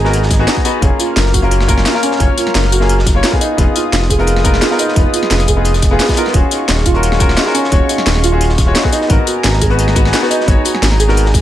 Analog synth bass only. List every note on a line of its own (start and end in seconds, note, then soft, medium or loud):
0.00 0.47 G#1 medium
0.82 0.90 F#1 loud
1.17 1.85 F#1 medium
2.20 2.28 F#1 loud
2.55 3.23 F#1 medium
3.58 3.66 F1 loud
3.93 4.61 F1 medium
4.96 5.04 F1 loud
5.31 5.98 F1 medium
6.34 6.42 D#1 loud
6.69 7.36 D#1 medium
7.72 7.80 D#1 loud
8.07 8.74 D#1 medium
9.10 9.18 G#1 loud
9.45 10.12 G#1 medium
10.48 10.56 G#1 loud
10.82 11.41 G#1 medium